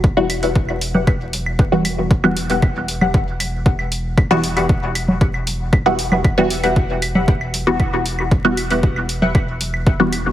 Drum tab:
HH |--oo--o---o---o-|--oo--o---o---o-|--oo--o---o---o-|--oo--o---o---o-|
CL |--x--x--x--x--x-|-x--x--x--x--x--|x--x--x--x--x--x|x--x--x--x--x--x|
CG |-------O--------|-------O--------|-O-----O-------O|-------O--------|
BD |o---o---o---o---|o---o---o---o---|o---o---o---o---|o---o---o---o---|

HH |--oo--o---o---o-|
CL |--x--x--x--x--x-|
CG |-------O--------|
BD |o---o---o---o---|